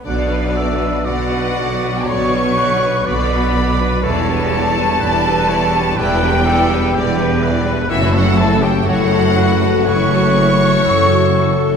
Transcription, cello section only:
X:1
M:4/4
L:1/8
Q:1/4=62
K:Bm
V:1 name="Cello section" clef=bass
B,,2 B,,2 B,,2 B,,2 | E,,2 E,,2 E,,2 E,,2 | F,,2 F,,2 F,,2 F,,2 |]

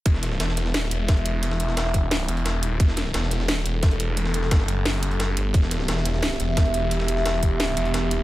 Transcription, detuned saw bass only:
X:1
M:4/4
L:1/8
Q:1/4=175
K:Em
V:1 name="Detuned saw bass" clef=bass
E,,,2 E,,,3 E,,,3- | E,,,2 E,,,3 E,,,3 | E,,,2 E,,,3 E,,,3- | E,,,2 F,,,4- F,,, G,,, |
E,,,2 E,,,3 E,,,3- | E,,,2 E,,,3 E,,,3 |]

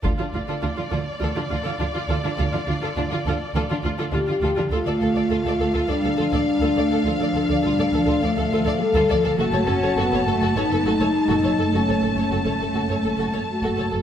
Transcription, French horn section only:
X:1
M:4/4
L:1/8
Q:1/4=103
K:Dphr
V:1 name="French horn section"
z8 | z6 G2 | F4 D4 | D4 A,2 A2 |
^F4 E4 | ^C6 ^F2 |]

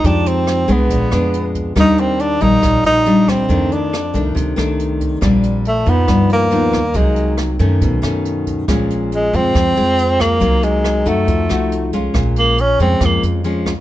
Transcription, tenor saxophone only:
X:1
M:4/4
L:1/8
Q:1/4=139
K:Fphr
V:1 name="Tenor saxophone"
=D C2 _C4 z | E C =D E2 E2 C- | C =D3 z4 | z2 =A, _C2 ^A,3 |
A,2 z6 | z2 A, C4 B,- | B, A,2 =A,4 z | z B, D C B, z3 |]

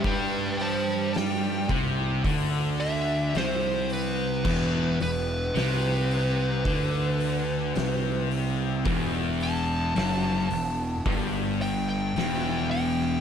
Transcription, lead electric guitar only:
X:1
M:4/4
L:1/16
Q:1/4=54
K:Em
V:1 name="Lead electric guitar"
[Bg]2 [ca]2 g2 z4 e2 c2 B2- | B2 B12 z2 | z2 a8 g g3 g2 |]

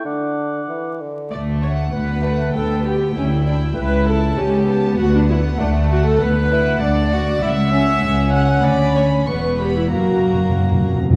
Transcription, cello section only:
X:1
M:2/4
L:1/8
Q:1/4=98
K:D
V:1 name="Cello section" clef=bass
z4 | D,,2 D,,2 | D,,2 D,,2 | C,,2 C,,2 |
D,,2 D,,2 | [K:F#phr] D,,2 D,,2 | C,,2 C,,2 | D,,2 E,,2 |
F,,3 z |]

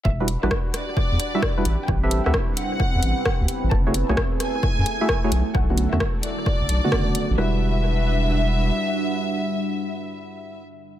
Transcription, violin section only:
X:1
M:4/4
L:1/16
Q:"Swing 16ths" 1/4=131
K:Em
V:1 name="Violin section"
e2 z d2 z d8- d z | g2 z f2 z f8- f z | a2 z ^g2 z g8- g z | f2 z e2 z d8- d z |
e16- | e16 |]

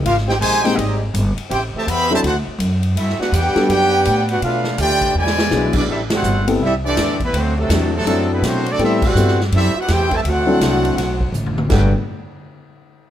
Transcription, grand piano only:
X:1
M:4/4
L:1/8
Q:"Swing" 1/4=165
K:G
V:1 name="Grand piano"
z3 [_A,_B,C_EG] z4 | z3 [F,CDEA] z4 | z3 [G,B,DFA] z4 | z6 [F,B,DE^G]2 |
z3 [G,B,CEA] z4 | z2 [F,CDEA] z [F,CDEA]3 z | [G,B,CEA] z [G,B,CEA] z4 z | z [F,CDEA]3 z4 |
[G,B,DFA] z6 z |]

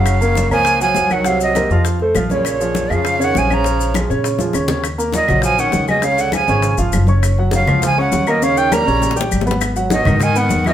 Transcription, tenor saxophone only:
X:1
M:4/4
L:1/8
Q:1/4=201
K:Bbm
V:1 name="Tenor saxophone" clef=bass
D,3 F,2 F,2 E, | C, C,3 z3 B,,- | B,,3 D,2 E, F, F,- | F,2 z6 |
[K:Ebm] z2 B,,2 F, E,2 C, | D, =D, F,3 z3 | z2 D,2 F, D,2 C, | D, E, =G,3 z3 |
z2 C,2 E, E,2 C, |]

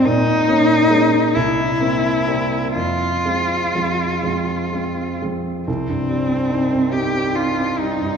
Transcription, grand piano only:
X:1
M:6/8
L:1/16
Q:3/8=45
K:Fm
V:1 name="Grand piano"
B,,2 [B,D]2 [A,B,D]2 C,,2 [B,C]2 [G,B,C]2 | F,,2 [A,C]2 [F,A,C]2 [F,A,C]2 [A,C]2 [F,A,C]2 | [K:Cm] C,, G,, G, C E C E C E C G, G,, |]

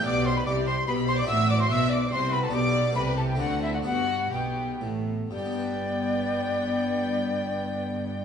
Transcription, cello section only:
X:1
M:3/4
L:1/8
Q:1/4=129
K:G
V:1 name="Cello section" clef=bass
B,,2 C,2 B,,2 | A,,2 B,,2 C,2 | B,,2 C,2 D,2 | G,,2 B,,2 A,,2 |
G,,6- | G,,6 |]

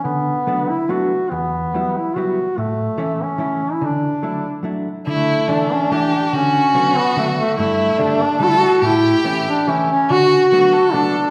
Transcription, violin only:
X:1
M:3/4
L:1/8
Q:1/4=143
K:D
V:1 name="Violin"
z6 | z6 | z6 | z6 |
E2 D2 G2 | F6 | E2 D2 A2 | G4- G z |
F2 F A3 |]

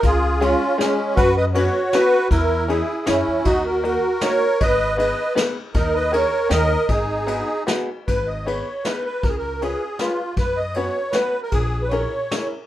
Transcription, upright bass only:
X:1
M:3/4
L:1/8
Q:"Swing" 1/4=157
K:G#m
V:1 name="Upright bass" clef=bass
C,,4 z2 | F,,4 z2 | E,,4 F,, E,, | D,,4 z2 |
G,,,4 z2 | D,,4 D,,2 | G,,,4 z2 | G,,,4 z2 |
C,,4 z2 | F,,4 z2 | A,,,4 z2 |]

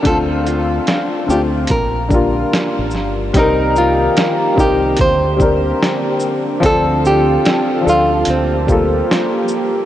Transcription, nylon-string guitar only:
X:1
M:4/4
L:1/8
Q:"Swing 16ths" 1/4=73
K:Bb
V:1 name="Nylon-string guitar"
A F2 G B3 z | E F2 G c2 z2 | A G2 F C2 z2 |]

